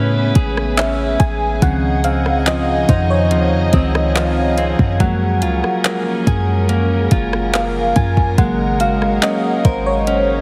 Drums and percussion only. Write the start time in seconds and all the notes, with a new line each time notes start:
0.35 kick, closed hi-hat
0.57 cross-stick
0.77 clap, closed hi-hat
1.20 kick, closed hi-hat
1.62 kick, closed hi-hat
2.04 closed hi-hat
2.26 cross-stick
2.46 clap, closed hi-hat
2.89 kick, closed hi-hat
3.31 closed hi-hat
3.73 kick, closed hi-hat
3.95 cross-stick
4.16 clap, closed hi-hat
4.58 closed hi-hat
4.79 kick
5.00 kick, closed hi-hat
5.42 closed hi-hat
5.64 cross-stick
5.85 clap, closed hi-hat
6.27 kick, closed hi-hat
6.69 closed hi-hat
7.11 kick, closed hi-hat
7.33 cross-stick
7.54 clap, closed hi-hat
7.96 kick, closed hi-hat
8.17 kick
8.38 kick, closed hi-hat
8.80 closed hi-hat
9.02 cross-stick
9.22 clap, closed hi-hat
9.65 kick, closed hi-hat
10.07 closed hi-hat